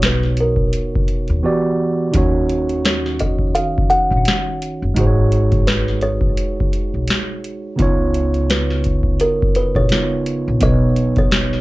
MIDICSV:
0, 0, Header, 1, 5, 480
1, 0, Start_track
1, 0, Tempo, 705882
1, 1460, Time_signature, 4, 2, 24, 8
1, 7894, End_track
2, 0, Start_track
2, 0, Title_t, "Kalimba"
2, 0, Program_c, 0, 108
2, 36, Note_on_c, 0, 71, 77
2, 275, Note_off_c, 0, 71, 0
2, 276, Note_on_c, 0, 70, 75
2, 961, Note_off_c, 0, 70, 0
2, 1945, Note_on_c, 0, 73, 72
2, 2179, Note_on_c, 0, 75, 88
2, 2189, Note_off_c, 0, 73, 0
2, 2412, Note_on_c, 0, 77, 102
2, 2427, Note_off_c, 0, 75, 0
2, 2639, Note_off_c, 0, 77, 0
2, 2651, Note_on_c, 0, 78, 98
2, 3108, Note_off_c, 0, 78, 0
2, 3856, Note_on_c, 0, 71, 90
2, 4097, Note_on_c, 0, 73, 105
2, 4105, Note_off_c, 0, 71, 0
2, 5031, Note_off_c, 0, 73, 0
2, 5782, Note_on_c, 0, 71, 73
2, 6263, Note_on_c, 0, 70, 103
2, 6275, Note_off_c, 0, 71, 0
2, 6503, Note_on_c, 0, 71, 94
2, 6509, Note_off_c, 0, 70, 0
2, 6626, Note_off_c, 0, 71, 0
2, 6638, Note_on_c, 0, 73, 94
2, 6958, Note_off_c, 0, 73, 0
2, 7227, Note_on_c, 0, 75, 108
2, 7572, Note_off_c, 0, 75, 0
2, 7605, Note_on_c, 0, 73, 91
2, 7894, Note_off_c, 0, 73, 0
2, 7894, End_track
3, 0, Start_track
3, 0, Title_t, "Tine electric piano"
3, 0, Program_c, 1, 4
3, 0, Control_c, 1, 64, 127
3, 0, Note_on_c, 1, 47, 61
3, 0, Note_on_c, 1, 59, 59
3, 0, Note_on_c, 1, 63, 61
3, 0, Note_on_c, 1, 66, 60
3, 0, Note_on_c, 1, 73, 72
3, 943, Note_off_c, 1, 47, 0
3, 948, Note_off_c, 1, 59, 0
3, 959, Note_off_c, 1, 66, 0
3, 964, Note_off_c, 1, 73, 0
3, 973, Note_on_c, 1, 52, 74
3, 975, Note_off_c, 1, 63, 0
3, 977, Note_on_c, 1, 59, 69
3, 981, Note_on_c, 1, 66, 72
3, 989, Control_c, 1, 64, 0
3, 989, Note_on_c, 1, 67, 69
3, 992, Note_on_c, 1, 74, 89
3, 1123, Control_c, 1, 64, 127
3, 1439, Note_on_c, 1, 51, 71
3, 1449, Note_on_c, 1, 63, 67
3, 1456, Note_off_c, 1, 52, 0
3, 1458, Note_off_c, 1, 59, 0
3, 1460, Note_on_c, 1, 61, 70
3, 1461, Note_off_c, 1, 66, 0
3, 1465, Note_off_c, 1, 67, 0
3, 1466, Note_off_c, 1, 74, 0
3, 1467, Control_c, 1, 64, 0
3, 1471, Note_on_c, 1, 66, 67
3, 1481, Note_on_c, 1, 73, 76
3, 1606, Control_c, 1, 64, 127
3, 3343, Note_off_c, 1, 51, 0
3, 3347, Note_off_c, 1, 63, 0
3, 3353, Note_off_c, 1, 61, 0
3, 3358, Note_off_c, 1, 66, 0
3, 3361, Note_on_c, 1, 56, 75
3, 3363, Note_off_c, 1, 73, 0
3, 3371, Note_on_c, 1, 63, 67
3, 3383, Note_on_c, 1, 66, 70
3, 3390, Control_c, 1, 64, 0
3, 3393, Note_on_c, 1, 68, 61
3, 3403, Note_on_c, 1, 72, 67
3, 3441, Note_off_c, 1, 72, 0
3, 3447, Note_on_c, 1, 73, 80
3, 3492, Control_c, 1, 64, 127
3, 5263, Note_off_c, 1, 56, 0
3, 5269, Note_off_c, 1, 63, 0
3, 5274, Note_off_c, 1, 66, 0
3, 5277, Note_on_c, 1, 49, 70
3, 5279, Note_off_c, 1, 68, 0
3, 5287, Note_on_c, 1, 59, 72
3, 5297, Note_on_c, 1, 63, 73
3, 5306, Note_off_c, 1, 73, 0
3, 5307, Control_c, 1, 64, 0
3, 5307, Note_on_c, 1, 65, 72
3, 5320, Note_on_c, 1, 73, 88
3, 5425, Control_c, 1, 64, 127
3, 6701, Note_off_c, 1, 49, 0
3, 6706, Note_off_c, 1, 59, 0
3, 6711, Note_off_c, 1, 63, 0
3, 6716, Note_off_c, 1, 65, 0
3, 6723, Note_off_c, 1, 73, 0
3, 6731, Note_on_c, 1, 49, 49
3, 6738, Note_on_c, 1, 59, 49
3, 6742, Note_on_c, 1, 63, 47
3, 6747, Note_on_c, 1, 65, 46
3, 6752, Note_on_c, 1, 73, 54
3, 7200, Note_on_c, 1, 47, 60
3, 7203, Note_off_c, 1, 59, 0
3, 7211, Note_on_c, 1, 59, 61
3, 7213, Note_off_c, 1, 63, 0
3, 7216, Note_off_c, 1, 49, 0
3, 7221, Note_on_c, 1, 63, 55
3, 7224, Note_off_c, 1, 65, 0
3, 7226, Note_off_c, 1, 73, 0
3, 7229, Control_c, 1, 64, 0
3, 7232, Note_on_c, 1, 71, 55
3, 7242, Note_on_c, 1, 73, 72
3, 7343, Control_c, 1, 64, 127
3, 7894, Note_off_c, 1, 47, 0
3, 7894, Note_off_c, 1, 59, 0
3, 7894, Note_off_c, 1, 63, 0
3, 7894, Note_off_c, 1, 71, 0
3, 7894, Note_off_c, 1, 73, 0
3, 7894, End_track
4, 0, Start_track
4, 0, Title_t, "Upright bass"
4, 0, Program_c, 2, 32
4, 0, Note_on_c, 2, 35, 94
4, 474, Note_off_c, 2, 35, 0
4, 882, Note_on_c, 2, 39, 82
4, 976, Note_off_c, 2, 39, 0
4, 1463, Note_on_c, 2, 39, 102
4, 2394, Note_off_c, 2, 39, 0
4, 2798, Note_on_c, 2, 34, 84
4, 2894, Note_off_c, 2, 34, 0
4, 3279, Note_on_c, 2, 30, 77
4, 3375, Note_off_c, 2, 30, 0
4, 3382, Note_on_c, 2, 32, 99
4, 4314, Note_off_c, 2, 32, 0
4, 4718, Note_on_c, 2, 35, 74
4, 4814, Note_off_c, 2, 35, 0
4, 5303, Note_on_c, 2, 37, 97
4, 6234, Note_off_c, 2, 37, 0
4, 6637, Note_on_c, 2, 34, 76
4, 6733, Note_off_c, 2, 34, 0
4, 7125, Note_on_c, 2, 34, 86
4, 7218, Note_off_c, 2, 34, 0
4, 7222, Note_on_c, 2, 35, 103
4, 7894, Note_off_c, 2, 35, 0
4, 7894, End_track
5, 0, Start_track
5, 0, Title_t, "Drums"
5, 15, Note_on_c, 9, 42, 73
5, 20, Note_on_c, 9, 38, 111
5, 83, Note_off_c, 9, 42, 0
5, 88, Note_off_c, 9, 38, 0
5, 158, Note_on_c, 9, 38, 29
5, 226, Note_off_c, 9, 38, 0
5, 251, Note_on_c, 9, 42, 66
5, 319, Note_off_c, 9, 42, 0
5, 383, Note_on_c, 9, 36, 84
5, 451, Note_off_c, 9, 36, 0
5, 496, Note_on_c, 9, 42, 86
5, 564, Note_off_c, 9, 42, 0
5, 650, Note_on_c, 9, 36, 85
5, 718, Note_off_c, 9, 36, 0
5, 735, Note_on_c, 9, 42, 64
5, 803, Note_off_c, 9, 42, 0
5, 869, Note_on_c, 9, 42, 31
5, 937, Note_off_c, 9, 42, 0
5, 1453, Note_on_c, 9, 42, 90
5, 1457, Note_on_c, 9, 36, 86
5, 1521, Note_off_c, 9, 42, 0
5, 1525, Note_off_c, 9, 36, 0
5, 1696, Note_on_c, 9, 42, 61
5, 1764, Note_off_c, 9, 42, 0
5, 1832, Note_on_c, 9, 42, 37
5, 1900, Note_off_c, 9, 42, 0
5, 1936, Note_on_c, 9, 42, 78
5, 1941, Note_on_c, 9, 38, 112
5, 2004, Note_off_c, 9, 42, 0
5, 2009, Note_off_c, 9, 38, 0
5, 2080, Note_on_c, 9, 38, 33
5, 2148, Note_off_c, 9, 38, 0
5, 2172, Note_on_c, 9, 42, 68
5, 2186, Note_on_c, 9, 36, 71
5, 2240, Note_off_c, 9, 42, 0
5, 2254, Note_off_c, 9, 36, 0
5, 2303, Note_on_c, 9, 36, 78
5, 2371, Note_off_c, 9, 36, 0
5, 2416, Note_on_c, 9, 42, 86
5, 2484, Note_off_c, 9, 42, 0
5, 2570, Note_on_c, 9, 36, 91
5, 2638, Note_off_c, 9, 36, 0
5, 2655, Note_on_c, 9, 42, 58
5, 2723, Note_off_c, 9, 42, 0
5, 2793, Note_on_c, 9, 36, 80
5, 2861, Note_off_c, 9, 36, 0
5, 2891, Note_on_c, 9, 42, 85
5, 2910, Note_on_c, 9, 38, 113
5, 2959, Note_off_c, 9, 42, 0
5, 2978, Note_off_c, 9, 38, 0
5, 3141, Note_on_c, 9, 42, 70
5, 3209, Note_off_c, 9, 42, 0
5, 3375, Note_on_c, 9, 42, 96
5, 3378, Note_on_c, 9, 36, 100
5, 3443, Note_off_c, 9, 42, 0
5, 3446, Note_off_c, 9, 36, 0
5, 3617, Note_on_c, 9, 42, 59
5, 3685, Note_off_c, 9, 42, 0
5, 3751, Note_on_c, 9, 42, 35
5, 3755, Note_on_c, 9, 36, 95
5, 3819, Note_off_c, 9, 42, 0
5, 3823, Note_off_c, 9, 36, 0
5, 3857, Note_on_c, 9, 42, 77
5, 3862, Note_on_c, 9, 38, 111
5, 3925, Note_off_c, 9, 42, 0
5, 3930, Note_off_c, 9, 38, 0
5, 3998, Note_on_c, 9, 38, 31
5, 4066, Note_off_c, 9, 38, 0
5, 4089, Note_on_c, 9, 42, 69
5, 4157, Note_off_c, 9, 42, 0
5, 4222, Note_on_c, 9, 36, 92
5, 4290, Note_off_c, 9, 36, 0
5, 4333, Note_on_c, 9, 42, 85
5, 4401, Note_off_c, 9, 42, 0
5, 4489, Note_on_c, 9, 36, 85
5, 4557, Note_off_c, 9, 36, 0
5, 4576, Note_on_c, 9, 42, 62
5, 4644, Note_off_c, 9, 42, 0
5, 4811, Note_on_c, 9, 42, 86
5, 4830, Note_on_c, 9, 38, 109
5, 4879, Note_off_c, 9, 42, 0
5, 4898, Note_off_c, 9, 38, 0
5, 5061, Note_on_c, 9, 42, 61
5, 5129, Note_off_c, 9, 42, 0
5, 5295, Note_on_c, 9, 42, 91
5, 5298, Note_on_c, 9, 36, 102
5, 5363, Note_off_c, 9, 42, 0
5, 5366, Note_off_c, 9, 36, 0
5, 5537, Note_on_c, 9, 42, 58
5, 5605, Note_off_c, 9, 42, 0
5, 5672, Note_on_c, 9, 42, 35
5, 5740, Note_off_c, 9, 42, 0
5, 5779, Note_on_c, 9, 42, 83
5, 5783, Note_on_c, 9, 38, 117
5, 5847, Note_off_c, 9, 42, 0
5, 5851, Note_off_c, 9, 38, 0
5, 5919, Note_on_c, 9, 38, 28
5, 5987, Note_off_c, 9, 38, 0
5, 6011, Note_on_c, 9, 42, 63
5, 6026, Note_on_c, 9, 36, 82
5, 6079, Note_off_c, 9, 42, 0
5, 6094, Note_off_c, 9, 36, 0
5, 6142, Note_on_c, 9, 36, 84
5, 6210, Note_off_c, 9, 36, 0
5, 6254, Note_on_c, 9, 42, 81
5, 6322, Note_off_c, 9, 42, 0
5, 6409, Note_on_c, 9, 36, 99
5, 6477, Note_off_c, 9, 36, 0
5, 6494, Note_on_c, 9, 42, 67
5, 6562, Note_off_c, 9, 42, 0
5, 6632, Note_on_c, 9, 36, 87
5, 6700, Note_off_c, 9, 36, 0
5, 6726, Note_on_c, 9, 42, 81
5, 6745, Note_on_c, 9, 38, 117
5, 6794, Note_off_c, 9, 42, 0
5, 6813, Note_off_c, 9, 38, 0
5, 6979, Note_on_c, 9, 42, 70
5, 7047, Note_off_c, 9, 42, 0
5, 7213, Note_on_c, 9, 42, 94
5, 7218, Note_on_c, 9, 36, 95
5, 7281, Note_off_c, 9, 42, 0
5, 7286, Note_off_c, 9, 36, 0
5, 7455, Note_on_c, 9, 42, 63
5, 7523, Note_off_c, 9, 42, 0
5, 7589, Note_on_c, 9, 42, 35
5, 7595, Note_on_c, 9, 36, 99
5, 7657, Note_off_c, 9, 42, 0
5, 7663, Note_off_c, 9, 36, 0
5, 7694, Note_on_c, 9, 42, 83
5, 7699, Note_on_c, 9, 38, 121
5, 7762, Note_off_c, 9, 42, 0
5, 7767, Note_off_c, 9, 38, 0
5, 7840, Note_on_c, 9, 38, 32
5, 7894, Note_off_c, 9, 38, 0
5, 7894, End_track
0, 0, End_of_file